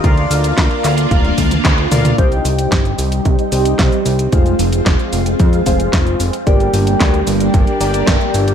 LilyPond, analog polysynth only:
\new Staff \with { instrumentName = "Analog polysynth" } { \time 4/4 \key c \minor \tempo 4 = 112 <f' bes' d'' f''>2~ <f' bes' d'' f''>8 r4 <f' bes' d'' f''>8 | <g' c'' ees'' g''>2~ <g' c'' ees'' g''>8 <g' c'' ees'' g''>4. | <f' aes' c'' f''>2~ <f' aes' c'' f''>8 <f' aes' c'' f''>4. | <g' bes' d'' g''>2~ <g' bes' d'' g''>8 <g' bes' d'' g''>4. | }